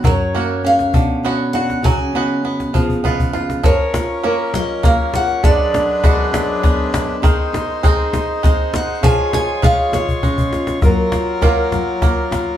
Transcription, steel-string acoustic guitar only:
X:1
M:6/8
L:1/8
Q:3/8=67
K:F#
V:1 name="Steel-string acoustic guitar"
c2 e2 z f | g4 z2 | c3 d e f | =d4 z2 |
z4 d f | g g e c2 z | z6 |]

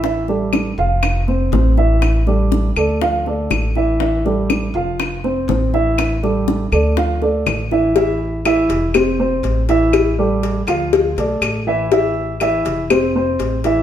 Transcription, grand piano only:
X:1
M:4/4
L:1/8
Q:1/4=121
K:Am
V:1 name="Grand piano"
[E,Ee] [G,GA]2 [F,Ff]2 [Cc] [Cc] [E,Ee]- | [E,Ee] [G,GA]2 [A,Ad] [F,Ff] [A,Ad]2 [E,Ee] | [E,Ee] [G,GA]2 [F,Ff]2 [Cc] [Cc] [E,Ee]- | [E,Ee] [G,GA]2 [A,Ad] [F,Ff] [A,Ad]2 [E,Ee] |
[E,Ee]2 [E,Ee]2 [Cc] [Cc]2 [E,Ee]- | [E,Ee] [G,GA]2 [F,Ff]2 [A,Ad]2 [E,Ee] | [E,Ee]2 [E,Ee]2 [Cc] [Cc]2 [E,Ee] |]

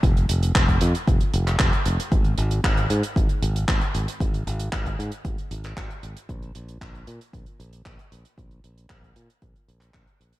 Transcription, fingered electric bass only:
X:1
M:4/4
L:1/8
Q:1/4=115
K:Bbmix
V:1 name="Fingered electric bass" clef=bass
F,,, F,,, F,,, F,, F,,, F,,, F,,, F,,, | A,,, A,,, A,,, A,, A,,, A,,, A,,, A,,, | A,,, A,,, A,,, A,, A,,, A,,, A,,, A,,, | B,,, B,,, B,,, B,, B,,, B,,, B,,, B,,, |
B,,, B,,, B,,, B,, B,,, B,,, B,,, B,,, |]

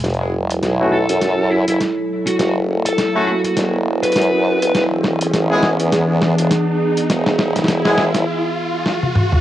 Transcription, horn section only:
X:1
M:4/4
L:1/16
Q:"Swing 16ths" 1/4=102
K:F#m
V:1 name="Horn section"
z4 z [A,CEF] z8 z2 | z4 z [A,CEF] z8 z2 | z4 z [G,B,EG] z8 z2 | z4 z [G,B,EG] z8 z2 |]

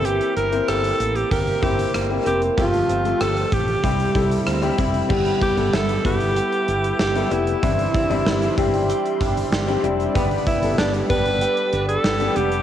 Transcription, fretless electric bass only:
X:1
M:4/4
L:1/16
Q:1/4=95
K:C
V:1 name="Fretless electric bass" clef=bass
G,,,2 G,,,2 G,,,2 A,,,2 G,,,2 G,,,2 G,,,2 F,,,2 | G,,,2 G,,,2 G,,,2 A,,,2 C,,2 C,,2 D,,2 F,,,2 | G,,,2 z G,,, G,,,2 G,,,3 z G,,,2 G,,,2 F,,,2 | G,,,2 z G,,, G,,,2 G,,,3 z G,,,2 G,,,2 F,,,2 |
G,,,2 z G,,, G,,,2 G,,,3 z G,,,2 G,,,2 F,,,2 |]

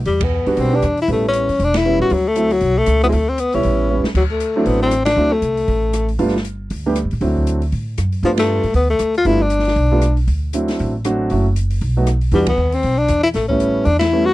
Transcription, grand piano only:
X:1
M:4/4
L:1/8
Q:"Swing" 1/4=235
K:G
V:1 name="Grand piano"
z3 [G,B,DF]2 [G,B,DG] z2 | [G,B,^CE]3 z3 [G,B,CE]2 | z2 [F,A,CE] z4 [F,A,CE] | z3 [G,B,^CE]3 [G,B,CE] z |
z3 [F,A,CDE]3 z2 | [F,A,CDE] z6 z | [G,A,B,D=F] z4 [G,A,B,DG] z2 | [F,A,CDE]3 z4 z |
[G,A,B,D=F]3 z4 z | [G,A,B,D=F] z4 [G,A,B,DF] z2 | z2 [F,A,CDE]3 z [F,A,CDF]2 | [F,A,^CEF] z4 [F,A,B,^DF] z2 |
[E,G,B,DF] z6 z | z [G,A,B,^CE]3 z2 [G,A,B,CE] z |]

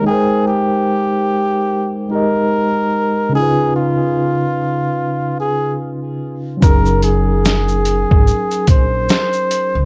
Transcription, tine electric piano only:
X:1
M:4/4
L:1/8
Q:"Swing 16ths" 1/4=73
K:Abmix
V:1 name="Tine electric piano"
[A,EBc=g]4- [A,EBcg] [A,E=GBe]3 | [D,DEF_c]8 | [G,DEAB]8 |]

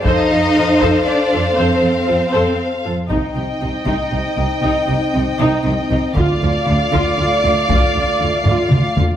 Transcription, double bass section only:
X:1
M:3/4
L:1/8
Q:1/4=118
K:Cdor
V:1 name="Double bass section" clef=bass
F,, F,, F,, F,, z F,, | F,, F,, F,, F,, z F,, | C,, C,, C,, C,, C,, C,, | C,, C,, C,, C,, C,, C,, |
D,, D,, D,, D,, D,, D,, | D,, D,, D,, D,, D,, D,, |]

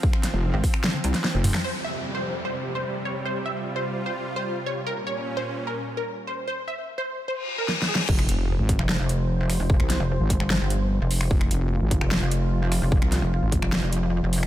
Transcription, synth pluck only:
X:1
M:4/4
L:1/16
Q:1/4=149
K:Cphr
V:1 name="Synth pluck"
z16 | c z =e2 z c2 z c2 z c2 z d z | c z =e2 z c2 z c2 z c2 z d z | B z d2 z c2 z B2 z B2 z c z |
c z =e2 z c2 z c2 z B2 z A z | z16 | z16 | z16 |
z16 |]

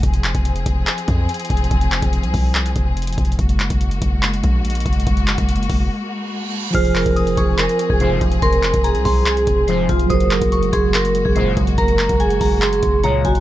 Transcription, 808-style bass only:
X:1
M:4/4
L:1/16
Q:1/4=143
K:Fphr
V:1 name="808-style bass" clef=bass
F,,,3 F,,,3 F,,,2 z2 F,,2 z2 F,,,2 | F,,,3 F,,,2 C,, C,,4 F,,,4 F,,,2 | G,,,3 G,,,3 G,,,4 B,,,4 G,,,2 | G,,,3 G,,,3 G,,,2 z8 |
F,,,3 F,,,3 F,,,3 z2 F,,,2 G,,, F,,,2 | F,,,3 F,,,2 C,, C,,4 F,,,4 F,,,2 | G,,,3 G,,,3 G,,,4- G,,, G,,,3 G,,,2 | G,,,3 G,,,3 G,,,4 G,,,2 D,,2 G,,,2 |]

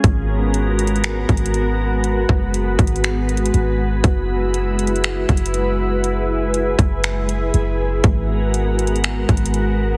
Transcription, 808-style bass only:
X:1
M:4/4
L:1/8
Q:1/4=120
K:G#m
V:1 name="808-style bass" clef=bass
G,,,4- G,,, G,,,3- | G,,, F,,,2 G,,,3 G,,,2 | F,,,4- F,,, F,,,3- | F,,,3 F,,,3 F,,,2 |
G,,,4- G,,, G,,,3 |]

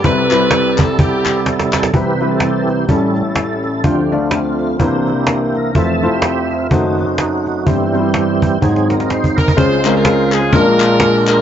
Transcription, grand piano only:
X:1
M:4/4
L:1/8
Q:"Swing" 1/4=126
K:C
V:1 name="Grand piano"
[G,CEB] [G,CEB]2 z4 z | [G,CEB] [G,CEB]2 z [G,^CEA]3 z | [A,DFc] [A,DFd]2 z [_B,DEc]3 z | [A,EFc] [A,EFc]2 z [A,^D^Fc]3 z |
[G,CEc] [G,CDEc]2 z [_A,_E_Gc]3 z | [K:Db] [A,CDFc] [A,CDFB]2 z [A,B,D=DFB]3 z |]
V:2 name="Grand piano" clef=bass
[C,,C,]8 | [C,,C,]4 [A,,,A,,]4 | [D,,D,]4 [C,,C,]4 | [F,,,F,,]4 [^F,,,^F,,]4 |
[G,,,G,,]4 [_A,,,_A,,]4 | [K:Db] [D,,D,]4 [B,,,B,,]4 |]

